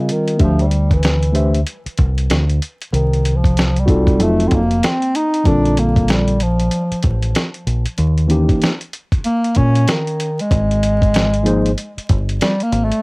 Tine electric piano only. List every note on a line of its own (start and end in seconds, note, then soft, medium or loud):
0.00 0.34 G3 medium
0.00 0.35 C4 medium
0.00 0.35 F4 medium
0.00 0.36 A#4 medium
0.00 0.36 D#5 medium
0.37 0.63 A3 medium
0.37 0.64 D4 medium
0.37 0.64 G4 medium
0.37 0.65 C5 medium
0.37 0.65 E5 medium
1.32 1.58 A3 medium
1.32 1.58 D4 medium
1.32 1.59 G4 medium
1.32 1.59 C5 medium
1.32 1.60 E5 medium
3.86 4.18 C4 medium
3.86 4.19 D#4 medium
3.86 4.19 F4 medium
3.86 4.77 F#4 medium
3.86 4.20 A4 medium
4.18 4.58 F#3 medium
4.18 4.58 C4 medium
4.18 4.59 D#4 medium
4.18 4.59 F4 medium
4.18 4.60 A4 medium
5.44 6.35 D3 medium
5.44 6.35 G3 medium
5.44 6.36 C4 medium
5.44 6.36 F4 medium
5.44 6.36 A4 medium
8.27 8.68 E3 medium
8.27 8.68 A#3 medium
8.27 8.69 C#4 medium
8.27 8.69 D#4 medium
8.27 8.70 G4 medium
11.43 11.69 F3 medium
11.43 11.69 A#3 medium
11.43 11.70 D#4 medium
11.43 11.70 G#4 medium
11.43 11.71 C5 medium